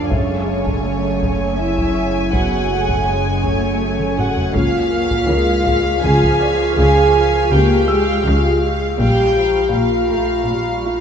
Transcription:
Already playing: F3 D4 D5
0.10 F#1 F#2 G#3 C#4 G#4 C#5 E5 G#5, taiko
0.67 taiko
0.86 A3
1.23 taiko
1.59 C#4 E4 E5
1.78 taiko
1.95 C#5
2.33 B3 F#4 F#5, taiko
2.70 A3
2.89 taiko
3.07 G#3 C#4 C#5
3.43 A3, taiko
4.00 taiko mid
4.18 F#4 F#5, taiko low-mid
4.37 taiko low
4.55 C#2 C#3 A#3 F4 F5 C#6 F6 B6, taiko
4.94 F5
5.11 taiko
5.27 C#2 C#3 G#3 A#3 A#4 F5
5.67 F5, taiko
6.03 C#2 C#3 F3 G#4 F5 G#5
6.23 taiko
6.40 D5 F5
6.76 C#2 C#3 G#4 F5 G#5
7.14 F5
7.51 C#2 C#3 A#3 G4 F5 G5
7.88 G#3 F5 E6
8.26 C#2 C#3 F4 F5
8.64 F5
8.99 A#1 A#2 G3 F4 G4 F5 G5 A#5 B5 C#6, taiko
9.37 F3 F5
9.74 A#1 A#2 A#3 F4 F5
10.10 A3 F5, taiko
10.46 A#1 A#2 G3 F5
10.85 A3 F4 F5

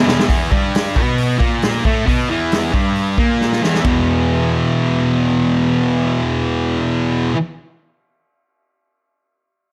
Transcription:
0.06 E2 B2 E3, snare
0.20 snare
0.29 E2 E3, kick, open hi-hat
0.51 G2 G3, kick
0.75 snare, open hi-hat
0.95 B2 B3, kick
1.18 open hi-hat
1.38 A#2 A#3, kick
1.62 snare, open hi-hat
1.85 A2 A3, kick
2.06 B2 B3, kick, open hi-hat
2.29 E2 E3
2.52 snare, open hi-hat
2.73 G2 G3, kick
2.96 open hi-hat
3.17 A#2 A#3, kick
3.41 snare
3.52 snare
3.61 E2 E3, snare
3.75 snare
3.81 E2 B2, kick, floor tom, ride bell
3.86 E3

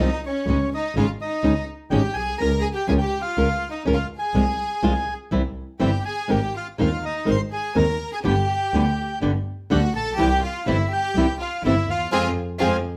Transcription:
Already playing: D#4 D#5
0.00 C2 F3 C4 F4
0.26 C#4 C#5
0.46 C#2 C#3 G#3 C#4 D#4 G#4
0.74 D#4 D#5
0.95 G#1 C#3 G#3 C#4 D#4 F4 G#4 F5
1.21 D#4 D#5
1.43 C#2 C#3 G#3 C#4 D#4 G#4
1.90 G#1 C#3 G#3 C#4 D#4 G4 G#4 G5
2.14 B1 G#4 G#5
2.38 C#2 C#4 F4 A#4 A#5
2.61 G#4 G#5
2.73 G4 G5
2.87 C#2 C#4 F4 G#4 A#4 G#5
2.98 G4 G5
3.22 F4 F5
3.37 C#2 C#4 F4 A#4
3.71 D#4 D#5
3.86 C#2 C#4 F4 A#4
3.95 F4 F5
4.19 G#4 G#5
4.34 C2 C3 F3 G#3 C4 F4
4.83 C2 C3 F3 G#3 C4 F4
5.31 C2 C3 E3 G3 C4 E4
5.79 G1 C3 E3 G3 C4 E4 G4 G5
6.05 G#4 G#5
6.28 G#1 G#3 C4 D#4 G4 A#4 G5
6.55 F4 F5
6.78 D#2 G#3 C4 D#4 F4 A#4 F5
7.04 D#4 D#5
7.25 G#1 G#3 C4 D#4 A#4 C5
7.31 C6
7.52 G#4 G#5
7.75 D#2 G#3 C4 D#4 A#4 A#5
8.13 G#4 G#5
8.23 G1 D3 G3 B3 D4 G4
8.28 G5
8.73 D2 D3 G3 B3 D4 G4
9.22 G1 D3 G3 B3 D4 G4
9.70 D2 D3 G3 B3 D4 F#4 G4 F#5
9.95 A#1 A4 A5
10.17 C2 C3 E3 G3 C4 E4 G4
10.22 G5
10.43 F4 F5
10.66 G1 C3 E3 G3 C4 E4 E5
10.89 G4 G5
11.15 C2 C3 E3 G3 C4 E4
11.38 F4 F5
11.63 G1 C3 E3 G3 C4 E4 E5
11.88 D#2 F4 F5
12.12 F2 F3 G#3 C4 F4 G#4 C5 F5 G#5
12.59 F2 F3 G#3 C4 F4 G#4 C5 F5 G#5

